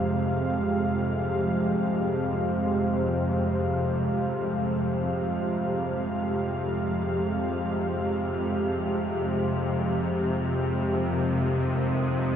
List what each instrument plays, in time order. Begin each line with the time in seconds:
Already playing: synth drone F2 C3, analog synth pad G#3 G4 C5 F5, synth texture F4 F5
10.37 analog synth pad A#4
10.76 synth texture D#4 D#5